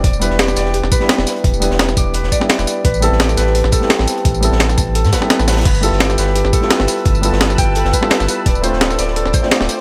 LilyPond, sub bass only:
\new Staff \with { instrumentName = "Sub bass" } { \clef bass \time 4/4 \key a \minor \tempo 4 = 171 e,,8. e,,8. e,,8. e,,16 r8. e,,16 r8 | e,,8. e,,8. e,,8. e,,16 r8. e,,16 r8 | a,,8. a,,8. a,,8. a,,16 r8. a,,16 r8 | a,,8. a,,8. a,,8. a,16 r8. a,,8. |
g,,8. g,,8. g,,8. g,,16 r8. g,,16 r8 | g,,8. g,,8. g,,8. g,,16 r8. g,,16 r8 | d,,8. d,,8. d,,8. d,,16 r8. d,,16 r8 | }